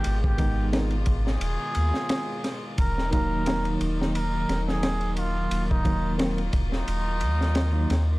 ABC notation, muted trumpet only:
X:1
M:4/4
L:1/16
Q:"Swing 16ths" 1/4=88
K:Eb
V:1 name="Muted trumpet"
G G3 z3 A8 z | B2 B4 z2 B3 A3 F2- | F E3 z3 E8 z |]